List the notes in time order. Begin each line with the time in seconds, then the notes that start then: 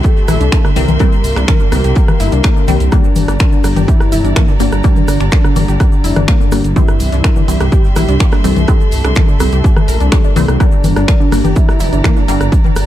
Already playing: G2 E3 G3 C4 G4 E5 C6
0.03 G4 A4 G5, kick, closed hi-hat, shaker
0.16 snare, shaker
0.28 A#1 E4 E5, cross-stick, closed hi-hat, open hi-hat, low conga, shaker
0.40 C2 D4 D5, closed hi-hat, shaker
0.52 A#3 A#4, finger snap, kick, snare, closed hi-hat, shaker
0.64 D3 D4, cross-stick, snare, shaker
0.76 C2 E3 G3 C4 G4 A#4, closed hi-hat, open hi-hat, shaker
0.88 C2, closed hi-hat, low conga, shaker
0.99 E3 G3 C4 G4, kick, cross-stick, closed hi-hat, shaker
1.12 closed hi-hat, shaker
1.24 C2, closed hi-hat, open hi-hat, shaker
1.36 C2 D4 D5, finger snap, cross-stick, closed hi-hat, shaker
1.48 A#4 A#5, finger snap, kick, snare, low conga, shaker
1.60 D3 D4, shaker
1.72 C2 E3 G3 C4, cross-stick, closed hi-hat, open hi-hat, shaker
1.84 C2 G4 G5, snare, closed hi-hat, shaker
1.95 G4 G5, kick, closed hi-hat, shaker
2.08 cross-stick, low conga, shaker
2.20 G1 E4 E5, snare, closed hi-hat, open hi-hat, shaker
2.32 C2 D4 D5, closed hi-hat, shaker
2.43 A#3 A#4, finger snap, kick, cross-stick, snare, closed hi-hat, shaker
2.56 D3 D4, shaker
2.68 C2 E3 G3 C4 G4, closed hi-hat, open hi-hat, low conga, shaker
2.80 C2, closed hi-hat, shaker
2.92 G2 D3 G3 A#3 D4 G4 D5 A#5, kick, cross-stick, closed hi-hat, shaker
3.04 shaker
3.16 G1, closed hi-hat, open hi-hat, low conga, shaker
3.28 G1 D4 D5, cross-stick, snare, closed hi-hat, shaker
3.39 A#4 A#5, finger snap, kick, snare, closed hi-hat, shaker
3.52 D3 D4, shaker
3.64 G1 D3 G3 A#3, cross-stick, open hi-hat, shaker
3.76 G1 G4 G5, closed hi-hat, low conga, shaker
3.88 E4 G4 G5, kick, closed hi-hat, shaker
4.00 cross-stick, snare, shaker
4.12 F1 E4 E5, closed hi-hat, open hi-hat, shaker
4.24 G1 D4 D5, closed hi-hat, shaker
4.36 A#3 A#4, finger snap, kick, cross-stick, snare, closed hi-hat, low conga, shaker
4.48 D3 D4, snare, shaker
4.60 G1 D3 G3 A#3 D4 G4, closed hi-hat, open hi-hat, shaker
4.72 G1, cross-stick, closed hi-hat, shaker
4.83 D3 G3 A#3 G4, kick, closed hi-hat, shaker
4.96 closed hi-hat, low conga, shaker
5.08 G1, cross-stick, closed hi-hat, open hi-hat, shaker
5.20 G1 D4 D5, finger snap, closed hi-hat, shaker
5.31 A#4 A#5, finger snap, kick, snare, closed hi-hat, shaker
5.44 D3 D4, cross-stick, shaker
5.56 G1 D3 G3 A#3, closed hi-hat, open hi-hat, low conga, shaker
5.68 G1 G4 G5, snare, closed hi-hat, shaker
5.80 G4 G5, kick, cross-stick, closed hi-hat, shaker
5.92 shaker
6.04 F1 E4 E5, closed hi-hat, open hi-hat, shaker
6.15 G1 D4 D5, cross-stick, closed hi-hat, low conga, shaker
6.28 A#3 A#4, finger snap, kick, snare, closed hi-hat, shaker
6.40 D3 D4, shaker
6.52 G1 D3 G3 A#3 G4, cross-stick, closed hi-hat, open hi-hat, shaker
6.64 G1, closed hi-hat, shaker
6.76 E3 G3 C4 E4 G4 E5 C6, kick, closed hi-hat, low conga, shaker
6.88 cross-stick, shaker
7.00 C2, closed hi-hat, open hi-hat, shaker
7.12 C2 D4 D5, snare, closed hi-hat, shaker
7.24 A#4 A#5, finger snap, kick, cross-stick, snare, closed hi-hat, shaker
7.36 D3 D4, low conga, shaker
7.48 C2 E3 G3 C4, open hi-hat, shaker
7.60 C2 G4 G5, cross-stick, closed hi-hat, shaker
7.72 G4 G5, kick, closed hi-hat, shaker
7.84 snare, shaker
7.96 A#1 E4 E5, cross-stick, snare, closed hi-hat, open hi-hat, low conga, shaker
8.08 C2 D4 D5, snare, closed hi-hat, shaker
8.19 A#3 A#4, finger snap, kick, closed hi-hat, shaker
8.32 D3 D4, cross-stick, snare, closed hi-hat, shaker
8.44 C2 E3 G3 C4 G4 A4, snare, open hi-hat, shaker
8.56 C2, closed hi-hat, low conga, shaker
8.68 E3 G3 C4 G4, kick, cross-stick, closed hi-hat, shaker
8.80 closed hi-hat, shaker
8.91 C2, closed hi-hat, open hi-hat, shaker
9.04 C2 D4 D5, finger snap, cross-stick, closed hi-hat, shaker
9.15 A#4 A#5, finger snap, kick, snare, closed hi-hat, low conga, shaker
9.28 D3 D4, shaker
9.40 C2 E3 G3 C4, cross-stick, closed hi-hat, open hi-hat, shaker
9.52 C2 G4 G5, closed hi-hat, shaker
9.64 G4 G5, kick, closed hi-hat, shaker
9.77 cross-stick, low conga, shaker
9.88 A#1 A#4 A#5, closed hi-hat, open hi-hat, shaker
10.00 C2 D4 D5, closed hi-hat, shaker
10.12 G3 G4, finger snap, kick, cross-stick, snare, closed hi-hat, shaker
10.24 D4 D5, shaker
10.36 C2 E3 G3 A#3 C4 A#4, closed hi-hat, open hi-hat, low conga, shaker
10.48 C2 G3 G4, cross-stick, closed hi-hat, shaker
10.60 D3 G3 A#3 D4 G4 D5 A#5, kick, cross-stick, closed hi-hat, shaker
10.72 shaker
10.84 G1, closed hi-hat, open hi-hat, low conga, shaker
10.96 G1 D4 D5, cross-stick, snare, closed hi-hat, shaker
11.08 A#4 A#5, finger snap, kick, snare, closed hi-hat, shaker
11.20 D3 D4, shaker
11.32 G1 D3 G3 A#3, cross-stick, open hi-hat, shaker
11.44 G1 G4 G5, closed hi-hat, low conga, shaker
11.56 G3 E4 G4, kick, closed hi-hat, shaker
11.69 cross-stick, snare, shaker
11.80 F1 E4 E5, closed hi-hat, open hi-hat, shaker
11.93 G1 D4 D5, closed hi-hat, shaker
12.04 A#3 A#4, finger snap, kick, cross-stick, snare, closed hi-hat, low conga, shaker
12.16 D3 D4, snare, shaker
12.28 G1 D3 G3 A#3 D4 G4, closed hi-hat, open hi-hat, shaker
12.41 G1, cross-stick, closed hi-hat, shaker
12.52 kick, closed hi-hat, shaker
12.64 closed hi-hat, low conga, shaker
12.76 G1, cross-stick, closed hi-hat, open hi-hat, shaker